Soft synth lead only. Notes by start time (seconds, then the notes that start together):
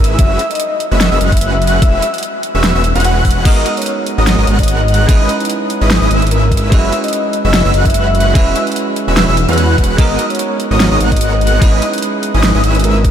Already playing: A#4
0.19 E5
0.51 D#5
0.92 D#5
1.32 E5
1.53 E5
1.82 E5
3.04 F#5
3.45 D#5
3.77 C#5
4.18 C#5
4.59 D#5
4.80 D#5
5.09 D#5
6.31 A#4
6.72 E5
7.04 D#5
7.45 D#5
7.86 E5
8.06 E5
8.35 E5
9.58 B4
9.98 D#5
10.30 C#5
10.71 C#5
11.12 D#5
11.32 D#5
11.62 D#5
12.84 A#4